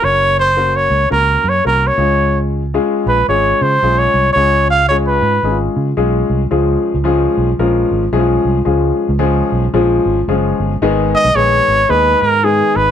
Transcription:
0.02 0.86 F#1 loud
0.02 0.47 A#3 medium
0.02 0.46 C#4 medium
0.02 0.46 F#4 medium
0.02 0.46 A#4 medium
0.02 0.39 C#5 loud
0.40 0.77 C5 loud
0.56 1.01 A#3 medium
0.56 1.00 C#4 medium
0.56 1.01 F#4 medium
0.56 1.01 A#4 medium
0.76 1.11 C#5 medium
0.90 1.06 C#2 medium
1.10 1.36 C#2 loud
1.10 1.55 A#3 medium
1.10 1.55 C#4 medium
1.10 1.55 F#4 medium
1.10 1.55 A#4 medium
1.10 1.51 A#4 loud
1.44 1.60 F#2 medium
1.49 1.66 C#5 loud
1.65 1.90 C2 medium
1.65 1.98 A#3 medium
1.65 1.97 C#4 medium
1.65 1.98 F#4 medium
1.65 1.98 A#4 medium
1.65 1.89 A#4 medium
1.87 2.40 C#5 medium
1.98 2.77 C#2 medium
1.98 2.61 G#3 medium
1.98 2.61 C#4 medium
1.98 2.61 F4 medium
1.98 2.61 G#4 medium
2.74 3.18 G#3 loud
2.74 3.17 C#4 medium
2.74 3.18 F4 medium
2.74 3.18 G#4 loud
3.06 3.22 A#1 loud
3.06 3.27 B4 medium
3.28 3.52 G#1 medium
3.28 3.72 G#3 medium
3.28 3.72 C#4 medium
3.28 3.72 F4 medium
3.28 3.72 G#4 medium
3.28 3.64 C#5 medium
3.62 3.77 C#3 loud
3.62 4.00 C5 medium
3.83 4.06 B1 medium
3.83 4.26 G#3 medium
3.83 4.26 C#4 medium
3.83 4.26 F4 medium
3.83 4.26 G#4 medium
3.98 4.32 C#5 loud
4.14 4.30 C2 medium
4.33 5.19 C#2 loud
4.33 4.79 G#3 medium
4.33 4.80 C#4 medium
4.33 4.80 F4 medium
4.33 4.80 G#4 medium
4.33 4.68 C#5 loud
4.70 4.88 F5 loud
4.89 5.34 G#3 medium
4.89 5.34 C#4 medium
4.89 5.34 F4 medium
4.89 5.33 G#4 medium
4.89 4.97 C#5 medium
5.07 5.58 B4 medium
5.22 5.38 G#2 loud
5.43 5.67 G#1 loud
5.43 5.87 G#3 medium
5.43 5.87 C#4 medium
5.43 5.52 D#4 medium
5.43 5.88 G#4 medium
5.51 5.91 F4 medium
5.77 5.92 C#3 medium
5.97 6.21 B1 loud
5.97 6.41 G#3 loud
5.97 6.41 C#4 medium
5.97 6.41 F4 medium
5.97 6.41 G#4 loud
6.30 6.46 C2 medium
6.51 6.75 C#2 medium
6.51 6.95 F3 medium
6.51 6.95 G#3 medium
6.51 6.95 C#4 medium
6.51 6.95 F4 medium
6.51 6.95 G#4 medium
6.94 7.26 C#2 medium
7.04 7.48 F3 loud
7.04 7.49 G#3 medium
7.04 7.49 C#4 medium
7.04 7.48 F4 medium
7.04 7.49 G#4 loud
7.37 7.53 B1 medium
7.59 7.83 A#1 medium
7.59 8.03 F3 medium
7.59 8.03 G#3 medium
7.59 8.03 C#4 medium
7.59 8.03 F4 medium
7.59 8.03 A#4 medium
7.91 8.07 G#1 medium
8.13 8.37 B1 medium
8.13 8.56 F3 loud
8.13 8.56 G#3 medium
8.13 8.56 C#4 medium
8.13 8.21 E4 medium
8.13 8.56 G#4 loud
8.20 8.60 F4 medium
8.45 8.61 C2 medium
8.65 8.90 C#2 medium
8.65 9.10 F3 medium
8.65 9.09 G#3 medium
8.65 9.09 C#4 medium
8.65 9.10 F4 medium
8.65 9.09 G#4 medium
9.09 9.41 C#2 loud
9.19 9.63 F3 loud
9.19 9.63 G#3 medium
9.19 9.63 C#4 medium
9.19 9.63 F4 medium
9.19 9.63 G#4 loud
9.52 9.68 B1 loud
9.73 9.98 A#1 loud
9.73 10.18 F3 loud
9.73 10.17 G#3 medium
9.73 10.18 C#4 medium
9.73 10.18 F4 medium
9.73 10.18 G#4 loud
10.06 10.22 G#1 medium
10.28 10.52 F#1 loud
10.28 10.72 F3 medium
10.28 10.72 G#3 medium
10.28 10.72 C#4 medium
10.28 10.72 F4 medium
10.28 10.72 G#4 loud
10.60 10.76 G1 medium
10.82 11.13 G#1 loud
10.82 11.26 D#3 loud
10.82 11.26 G#3 loud
10.82 11.25 B3 loud
10.82 11.25 D#4 loud
10.82 11.26 G#4 loud
11.15 11.37 D#5 loud
11.25 11.33 B1 loud
11.35 11.59 A#1 loud
11.35 11.79 D#3 medium
11.35 11.79 G#3 medium
11.35 11.79 B3 medium
11.35 11.79 D#4 medium
11.35 11.79 G#4 medium
11.35 11.91 C#5 loud
11.68 11.84 G#1 medium
11.89 12.14 D#2 loud
11.89 12.33 D#3 medium
11.89 12.33 G#3 medium
11.89 12.33 B3 medium
11.89 12.33 D#4 medium
11.89 12.33 G#4 medium
11.89 12.23 B4 medium
12.22 12.62 G#2 loud
12.22 12.46 A#4 medium
12.44 12.87 D#3 medium
12.44 12.87 G#3 medium
12.44 12.87 B3 medium
12.44 12.87 D#4 medium
12.44 12.78 G#4 medium
12.44 12.87 G#4 medium
12.76 12.91 G#1 medium
12.76 12.91 B4 loud

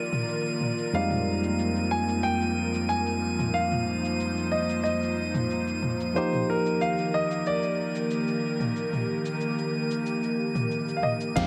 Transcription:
0.00 0.89 D#3 medium
0.00 0.89 F3 medium
0.00 0.89 A#3 medium
0.00 0.90 A#3 medium
0.00 0.90 D4 medium
0.00 0.90 D#4 medium
0.00 6.11 F4 medium
0.00 0.91 G4 medium
0.00 3.50 A#4 medium
0.00 0.89 D5 medium
0.00 11.38 D#7 medium
0.13 mid tom medium
0.13 cabasa medium
0.29 cabasa medium
0.46 cabasa soft
0.61 mid tom soft
0.78 cabasa medium
0.93 6.11 F2 medium
0.93 6.11 F3 medium
0.93 6.13 G3 medium
0.93 6.12 G#3 medium
0.93 6.11 A#3 medium
0.93 6.12 A#3 medium
0.93 6.12 C4 medium
0.93 6.11 D#4 medium
0.93 6.13 D#4 medium
0.93 1.95 F5 medium
0.93 cabasa soft
1.11 mid tom medium
1.11 cabasa soft
1.43 cabasa medium
1.59 cabasa soft
1.76 cabasa soft
1.91 2.25 G#5 medium
2.09 cabasa medium
2.23 2.85 G5 loud
2.23 cabasa soft
2.41 cabasa soft
2.74 cabasa medium
2.89 3.56 G#5 medium
2.89 cabasa soft
3.06 cabasa soft
3.39 mid tom medium
3.39 cabasa medium
3.54 6.12 C5 medium
3.54 4.48 F5 medium
3.54 cabasa soft
3.72 mid tom medium
3.72 cabasa soft
4.05 cabasa medium
4.20 cabasa soft
4.37 cabasa soft
4.52 4.82 D#5 medium
4.69 cabasa medium
4.84 5.78 D#5 medium
4.84 cabasa soft
5.03 cabasa soft
5.34 mid tom medium
5.34 cabasa medium
5.50 cabasa soft
5.67 cabasa soft
5.83 mid tom medium
6.00 cabasa medium
6.14 11.33 D#3 medium
6.14 11.33 F3 medium
6.14 11.33 A#3 medium
6.14 11.34 D#4 medium
6.14 11.33 G4 medium
6.14 11.35 G4 medium
6.14 11.33 A#4 medium
6.14 6.46 C5 medium
6.14 cabasa soft
6.33 mid tom medium
6.33 cabasa soft
6.50 6.82 A#4 medium
6.66 cabasa medium
6.81 7.11 F5 medium
6.81 cabasa soft
6.98 cabasa soft
7.14 7.47 D#5 medium
7.31 cabasa medium
7.46 10.68 D5 medium
7.46 cabasa soft
7.63 cabasa soft
7.95 cabasa medium
8.11 cabasa soft
8.28 cabasa soft
8.60 mid tom medium
8.60 cabasa medium
8.76 cabasa soft
8.93 mid tom medium
8.93 cabasa soft
9.26 cabasa medium
9.41 cabasa soft
9.58 cabasa soft
9.91 cabasa medium
10.06 cabasa soft
10.23 cabasa soft
10.55 mid tom medium
10.55 cabasa medium
10.71 cabasa soft
10.88 cabasa soft
10.97 11.04 F5 medium
11.03 11.11 D#5 medium
11.03 mid tom medium
11.21 cabasa medium
11.36 11.47 F2 loud
11.36 11.47 D#3 medium
11.36 11.47 G#3 medium
11.36 11.47 A#3 medium
11.36 11.47 C4 medium
11.36 11.47 D#4 medium
11.36 11.47 G4 medium
11.36 11.47 A#4 medium
11.36 11.47 F5 medium
11.36 kick loud
11.36 closed hi-hat soft
11.36 downlifter medium
11.36 cabasa soft

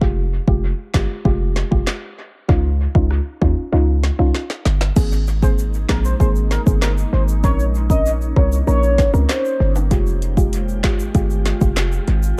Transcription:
0.01 0.40 F1 loud
0.01 0.22 G#3 loud
0.01 0.22 F4 medium
0.01 0.22 G4 loud
0.01 kick loud
0.48 0.73 F1 loud
0.48 0.68 G#3 medium
0.48 0.69 F4 medium
0.48 0.69 G4 medium
0.48 kick medium
0.94 1.07 G1 medium
0.94 1.15 G#3 medium
0.94 1.15 F4 medium
0.94 1.15 G4 medium
0.94 kick medium
0.94 snare loud
0.94 clap medium
1.25 1.63 F1 loud
1.25 1.68 G#3 medium
1.25 1.68 F4 medium
1.25 1.68 G4 loud
1.25 kick medium
1.56 snare medium
1.71 1.84 F1 medium
1.71 1.92 G#3 medium
1.71 1.92 F4 medium
1.71 1.92 G4 medium
1.71 kick loud
1.87 snare loud
1.87 clap medium
2.48 2.87 C#2 loud
2.48 2.69 C#4 loud
2.48 2.69 D#4 medium
2.48 2.70 F4 loud
2.48 kick loud
2.95 3.21 C#2 loud
2.95 3.16 C#4 medium
2.95 3.16 D#4 medium
2.95 3.16 F4 medium
2.95 kick medium
3.11 cross-stick medium
3.41 3.54 D#2 loud
3.41 3.62 C#4 medium
3.41 3.62 D#4 medium
3.41 3.62 F4 medium
3.41 kick medium
3.72 4.11 C#2 medium
3.72 4.15 C#4 medium
3.72 4.15 D#4 medium
3.72 4.15 F4 loud
4.03 snare medium
4.19 4.32 C2 medium
4.19 4.40 C#4 medium
4.19 4.40 D#4 medium
4.19 4.40 F4 medium
4.35 snare medium
4.50 snare medium
4.65 4.91 G1 medium
4.65 snare medium
4.81 snare medium
4.96 5.85 G#1 loud
4.96 7.41 G#3 medium
4.96 5.17 A#3 loud
4.96 7.41 A#3 medium
4.96 5.17 C4 medium
4.96 9.87 D#4 medium
4.96 5.17 G#4 loud
4.96 kick loud
4.96 crash medium
4.96 shaker medium
5.12 shaker medium
5.27 shaker medium
5.42 5.63 A#3 medium
5.42 5.63 C4 medium
5.42 5.64 G#4 medium
5.42 5.53 C5 medium
5.42 kick medium
5.42 shaker medium
5.59 shaker medium
5.74 shaker soft
5.89 6.15 A#1 medium
5.89 6.10 A#3 medium
5.89 6.10 C4 medium
5.89 6.10 G#4 medium
5.89 6.00 A#4 medium
5.89 kick medium
5.89 snare loud
5.89 clap medium
6.04 6.15 C5 medium
6.04 shaker medium
6.20 6.58 G#1 loud
6.20 6.62 A#3 loud
6.20 6.63 C4 medium
6.20 6.63 G#4 loud
6.20 6.30 C5 medium
6.20 kick medium
6.20 shaker medium
6.36 shaker soft
6.51 6.61 A#4 medium
6.51 snare medium
6.51 shaker soft
6.66 7.05 G1 medium
6.66 6.87 A#3 medium
6.66 6.87 C4 medium
6.66 6.87 G#4 medium
6.66 kick loud
6.66 shaker medium
6.82 6.92 A#4 medium
6.82 snare loud
6.82 clap loud
6.82 shaker medium
6.98 shaker soft
7.13 7.45 G#1 medium
7.13 7.23 C5 medium
7.28 shaker medium
7.43 8.33 A#1 loud
7.43 9.89 A#3 medium
7.43 7.64 C4 loud
7.43 9.89 C#4 medium
7.43 7.64 C#4 medium
7.43 7.65 A#4 loud
7.43 7.65 C#5 loud
7.43 kick loud
7.43 shaker medium
7.60 shaker medium
7.75 shaker medium
7.90 8.11 C4 medium
7.90 8.11 C#4 medium
7.90 8.11 A#4 medium
7.90 8.11 D#5 medium
7.90 kick medium
7.90 shaker medium
8.06 shaker medium
8.21 shaker soft
8.36 8.62 C2 loud
8.36 8.57 C4 medium
8.36 8.57 C#4 medium
8.36 8.57 A#4 medium
8.36 8.58 C#5 medium
8.36 kick medium
8.52 shaker medium
8.67 9.06 A#1 loud
8.67 9.10 A#3 medium
8.67 9.10 C#4 medium
8.67 9.10 A#4 loud
8.67 9.11 C#5 loud
8.67 shaker medium
8.83 shaker soft
8.98 kick medium
8.98 snare medium
8.98 high timbale medium
8.98 shaker soft
9.13 9.26 C#2 medium
9.13 9.34 C4 medium
9.13 9.34 C#4 medium
9.13 9.35 A#4 medium
9.13 shaker medium
9.29 9.73 C5 medium
9.29 snare loud
9.29 clap loud
9.29 shaker medium
9.45 shaker soft
9.60 9.93 G1 medium
9.76 high timbale medium
9.76 shaker medium
9.91 10.85 F1 loud
9.91 10.12 G#3 medium
9.91 12.36 G#3 medium
9.91 12.40 F4 medium
9.91 10.12 F4 medium
9.91 12.36 G4 medium
9.91 10.12 G4 loud
9.91 kick loud
9.91 closed hi-hat medium
9.91 shaker medium
10.07 shaker medium
10.22 closed hi-hat soft
10.22 shaker medium
10.37 10.58 G#3 medium
10.37 10.58 F4 medium
10.37 10.58 G4 medium
10.37 kick medium
10.37 shaker medium
10.53 closed hi-hat medium
10.53 shaker medium
10.69 shaker soft
10.83 11.09 G#1 medium
10.83 11.04 G#3 medium
10.83 11.05 F4 medium
10.83 11.05 G4 medium
10.83 kick medium
10.83 snare loud
10.83 clap medium
10.83 closed hi-hat medium
10.99 shaker medium
11.14 11.53 G1 loud
11.14 11.57 G#3 loud
11.14 11.57 F4 medium
11.14 11.58 G4 loud
11.14 kick medium
11.14 closed hi-hat medium
11.14 shaker medium
11.30 shaker medium
11.45 snare medium
11.45 closed hi-hat medium
11.45 shaker soft
11.61 11.99 F1 medium
11.61 11.82 G#3 medium
11.61 11.82 F4 medium
11.61 11.82 G4 medium
11.61 kick loud
11.61 shaker medium
11.76 snare loud
11.76 clap medium
11.76 closed hi-hat medium
11.76 shaker medium
11.92 shaker soft
12.08 12.33 G#1 medium
12.08 closed hi-hat soft
12.23 shaker medium

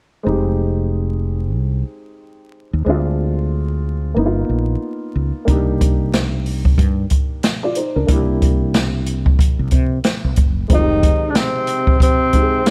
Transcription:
0.23 1.56 F1 medium
0.23 2.81 G#3 medium
0.23 2.82 C4 medium
0.23 2.83 D#4 medium
0.28 2.84 G4 medium
1.56 1.82 C2 medium
2.73 2.84 D#2 medium
2.85 4.13 D2 medium
2.85 4.14 G#3 medium
2.85 4.14 C4 medium
2.85 4.15 D4 medium
2.90 4.16 F4 medium
4.14 4.43 G1 medium
4.14 5.43 A#3 medium
4.14 5.45 B3 medium
4.14 5.45 D#4 medium
4.19 4.26 E4 medium
4.26 5.50 F4 medium
4.49 4.75 A#1 medium
5.15 5.31 C#2 medium
5.45 6.74 C2 medium
5.45 8.03 A#3 medium
5.45 7.39 D4 medium
5.45 7.40 D#4 medium
5.45 kick medium
5.45 closed hi-hat medium
5.50 7.41 G4 medium
5.81 kick medium
5.81 closed hi-hat medium
6.13 snare medium
6.13 closed hi-hat medium
6.46 open hi-hat soft
6.65 kick medium
6.78 7.04 G2 medium
6.78 kick medium
6.78 closed hi-hat medium
7.10 kick medium
7.10 closed hi-hat medium
7.43 snare medium
7.43 closed hi-hat medium
7.63 7.76 F4 soft
7.63 7.76 D5 medium
7.75 7.95 D#4 soft
7.75 7.94 C5 soft
7.75 closed hi-hat medium
7.96 8.06 C#2 medium
7.96 8.07 D4 soft
7.96 8.26 A#4 medium
8.07 9.35 C2 loud
8.07 10.65 A#3 medium
8.07 10.66 D4 medium
8.07 10.66 E4 medium
8.07 kick medium
8.07 closed hi-hat medium
8.12 10.67 G4 medium
8.42 kick medium
8.42 closed hi-hat medium
8.74 snare medium
8.74 closed hi-hat medium
9.06 closed hi-hat medium
9.26 kick medium
9.39 kick loud
9.39 closed hi-hat medium
9.59 9.69 C2 medium
9.71 9.98 C3 medium
9.71 kick medium
9.71 closed hi-hat medium
10.04 snare medium
10.04 closed hi-hat medium
10.24 10.38 C2 medium
10.36 10.63 F#1 medium
10.36 kick medium
10.36 closed hi-hat medium
10.68 11.11 F1 medium
10.68 11.29 D#3 medium
10.68 12.28 G#3 medium
10.68 12.29 C4 medium
10.68 12.30 D#4 medium
10.68 kick medium
10.68 closed hi-hat medium
10.73 11.32 D#4 medium
10.73 10.79 F4 medium
10.79 12.33 G4 medium
11.03 kick medium
11.03 closed hi-hat medium
11.28 11.37 D3 soft
11.28 11.39 D4 medium
11.35 11.99 C3 medium
11.35 12.01 C4 medium
11.35 snare loud
11.35 closed hi-hat medium
11.67 closed hi-hat medium
11.87 kick medium
12.00 12.67 C3 medium
12.00 12.70 C4 medium
12.00 kick loud
12.00 closed hi-hat medium
12.32 12.70 G#3 soft
12.32 12.70 C4 soft
12.32 12.70 D#4 soft
12.32 12.41 G4 soft
12.32 kick medium
12.32 closed hi-hat medium
12.42 12.70 G#4 soft
12.65 12.70 D#3 medium
12.65 snare loud
12.65 closed hi-hat medium

